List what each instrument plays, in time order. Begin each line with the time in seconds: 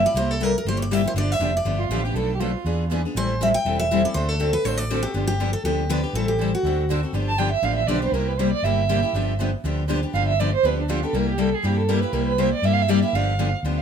0.03 steel-string acoustic guitar A#3 E4 G4 D5
0.14 fretless electric bass C2, steel-string acoustic guitar C3 G3 A#3 E4 G4 C5
0.31 steel-string acoustic guitar A4
0.40 steel-string acoustic guitar C3 G3 A#3 E4 G4 A#4
0.58 steel-string acoustic guitar A#4
0.65 fretless electric bass G1, steel-string acoustic guitar C3 G3 A#3 E4 G4 C5
0.77 steel-string acoustic guitar C#5
0.82 steel-string acoustic guitar D5
0.91 steel-string acoustic guitar C3 G3 A#3 E4 G4 E5
1.04 steel-string acoustic guitar A#3 E4 G4 C5
1.14 fretless electric bass G1, steel-string acoustic guitar D3 F3 B3 D4 G4 D5
1.32 steel-string acoustic guitar E5
1.39 fretless electric bass F1, steel-string acoustic guitar D3 F3 B3 D4 G4
1.57 steel-string acoustic guitar D5
1.65 fretless electric bass G1, steel-string acoustic guitar D3 F3 B3 D4 G4
1.78 violin F4
1.89 fretless electric bass A1, steel-string acoustic guitar D3 F3 B3 D4 G4
2.04 steel-string acoustic guitar B3 D4 G4, violin G4
2.14 fretless electric bass B1, steel-string acoustic guitar B2 F3 A3 D4 A4 B4, violin A4
2.34 violin G4
2.40 steel-string acoustic guitar B2 F3 A3 D4 A4 B4, violin F4
2.65 fretless electric bass E2, steel-string acoustic guitar E3 B3 D4 G#4 B4
2.91 steel-string acoustic guitar E3 B3 D4 G#4 B4
3.05 steel-string acoustic guitar B3 D4 G#4
3.15 fretless electric bass A1, steel-string acoustic guitar E3 G3 C4 E4 A4 C5
3.41 steel-string acoustic guitar E3 G3 C4 E4 A4 E5
3.54 steel-string acoustic guitar G5
3.65 fretless electric bass E1, steel-string acoustic guitar E3 G3 C4 E4 A4
3.79 steel-string acoustic guitar E5
3.91 steel-string acoustic guitar E3 G3 C4 E4 A4
4.04 steel-string acoustic guitar C4 E4 A4 D5
4.14 fretless electric bass D2, steel-string acoustic guitar D3 A3 C4 F#4 A4 C5
4.29 steel-string acoustic guitar A4
4.40 steel-string acoustic guitar D3 A3 C4 F#4 A4
4.53 steel-string acoustic guitar B4
4.64 fretless electric bass A1, steel-string acoustic guitar D3 A3 C4 F#4 A4 C5
4.77 steel-string acoustic guitar D5
4.90 steel-string acoustic guitar D3 A3 C4 F#4 A4
5.03 steel-string acoustic guitar C4 F#4 G4 A4
5.14 fretless electric bass G1, steel-string acoustic guitar D3 F3 B3 D4 G4
5.27 steel-string acoustic guitar G4
5.40 steel-string acoustic guitar D3 F3 B3 D4 G4
5.53 steel-string acoustic guitar A4
5.64 fretless electric bass D2, steel-string acoustic guitar D3 F3 B3 D4 G4
5.89 steel-string acoustic guitar D3 F3 B3 D4 G4 B4
6.03 steel-string acoustic guitar B3 D4 G4
6.13 fretless electric bass A1, steel-string acoustic guitar E3 G3 C4 E4 A4
6.28 steel-string acoustic guitar G4
6.41 steel-string acoustic guitar E3 G3 C4 E4 A4
6.55 steel-string acoustic guitar F#4
6.63 fretless electric bass D2, steel-string acoustic guitar D3 A3 C4 F#4 A4
6.90 steel-string acoustic guitar D3 A3 C4 F#4 A4
7.03 steel-string acoustic guitar C4 F#4 A4
7.13 fretless electric bass G1, steel-string acoustic guitar D3 F3 B3 D4 G4
7.28 violin A5
7.38 steel-string acoustic guitar D3 F3 B3 D4 G4, violin G5
7.52 violin E5
7.62 fretless electric bass A1, steel-string acoustic guitar D3 F3 B3 D4 G4, violin F5
7.76 violin E5
7.87 fretless electric bass B1, steel-string acoustic guitar D3 F3 B3 D4 G4, violin D5
8.02 steel-string acoustic guitar B3 D4 G4, violin C5
8.12 fretless electric bass C2, steel-string acoustic guitar C3 G3 A#3 E4 G4, violin A#4
8.28 violin B4
8.38 steel-string acoustic guitar C3 G3 A#3 E4 G4, violin C5
8.51 violin D5
8.62 fretless electric bass G1, steel-string acoustic guitar C3 G3 A#3 E4 G4, violin E5
8.89 steel-string acoustic guitar C3 G3 A#3 E4 G4
9.03 steel-string acoustic guitar A#3 E4 G4
9.13 fretless electric bass G1, steel-string acoustic guitar D3 F3 B3 D4 G4
9.40 steel-string acoustic guitar D3 F3 B3 D4 G4
9.64 fretless electric bass D2, steel-string acoustic guitar D3 F3 B3 D4 G4
9.89 steel-string acoustic guitar D3 F3 B3 D4 G4
10.03 steel-string acoustic guitar B3 D4 G4
10.14 fretless electric bass G1, steel-string acoustic guitar D3 F3 B3 D4 G4, violin F5
10.28 violin E5
10.40 steel-string acoustic guitar D3 F3 B3 D4 G4, violin D5
10.55 violin C5
10.63 fretless electric bass D2, steel-string acoustic guitar D3 F3 B3 D4 G4, violin B4
10.80 violin D4
10.89 steel-string acoustic guitar D3 F3 B3 D4 G4, violin F4
11.03 steel-string acoustic guitar B3 D4 G4, violin A4
11.13 fretless electric bass C2, steel-string acoustic guitar C3 G3 A#3 E4 G4, violin A#4
11.29 violin G4
11.38 steel-string acoustic guitar C3 G3 A#3 E4 G4, violin A4
11.55 violin G#4
11.63 fretless electric bass G2, steel-string acoustic guitar C3 G3 A#3 E4 G4, violin G4
11.77 violin A4
11.88 steel-string acoustic guitar C3 G3 A#3 E4 G4, violin A#4
12.00 steel-string acoustic guitar A#3 E4 G4, violin B4
12.13 fretless electric bass C2, steel-string acoustic guitar C3 G3 A#3 E4 G4, violin A#4
12.27 violin B4
12.38 steel-string acoustic guitar C3 G3 A#3 E4 G4, violin C5
12.53 violin D5
12.62 fretless electric bass G2, steel-string acoustic guitar C3 G3 A#3 E4 G4, violin E5
12.74 violin F5
12.82 violin E5
12.88 steel-string acoustic guitar C3 G3 A#3 E4 G4, violin D5
13.02 steel-string acoustic guitar A#3 E4 G4, violin E5
13.13 fretless electric bass G1, steel-string acoustic guitar D3 F3 B3 D4 G4, violin F5
13.39 steel-string acoustic guitar D3 F3 B3 D4 G4
13.63 fretless electric bass D2, steel-string acoustic guitar D3 F3 B3 D4 G4
13.79 violin F5